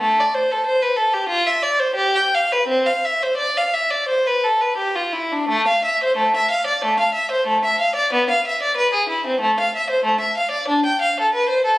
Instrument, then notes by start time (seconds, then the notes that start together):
violin
0.00 A3
0.20 D5
0.35 C5
0.52 A4
0.66 C5
0.82 B4
0.97 A4
1.14 G4
1.29 F4
1.47 E5
1.63 D5
1.80 C5
1.95 G4
2.16 G5
2.35 F5
2.52 B4
2.67 C4
2.86 F5
3.05 E5
3.23 C5
3.37 D5
3.57 F5
3.74 E5
3.91 D5
4.09 C5
4.27 B4
4.44 A4
4.61 B4
4.77 G4
4.95 F4
5.13 E4
5.32 D4
5.49 A3
5.67 F5
5.85 E5
6.04 C5
6.17 A3
6.36 E5
6.51 F5
6.67 D5
6.84 A3
7.00 F5
7.14 E5
7.31 C5
7.47 A3
7.65 E5
7.80 F5
7.95 D5
8.13 B3
8.30 F5
8.47 E5
8.63 D5
8.77 B4
8.94 G#4
9.09 E4
9.27 C4
9.41 A3
9.60 F5
9.76 E5
9.90 C5
10.04 A3
10.20 E5
10.37 F5
10.51 D5
10.68 D4
10.85 G5
11.01 F5
11.20 A4
11.34 B4
11.49 C5
11.65 A4